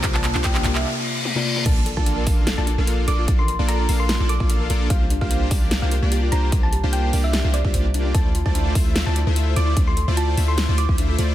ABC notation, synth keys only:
X:1
M:4/4
L:1/16
Q:"Swing 16ths" 1/4=148
K:Bblyd
V:1 name="Synth keys"
[C,B,Fd]12- [C,B,Fd] [C,B,Fd]3 | z16 | z16 | z16 |
z16 | z16 | z16 |]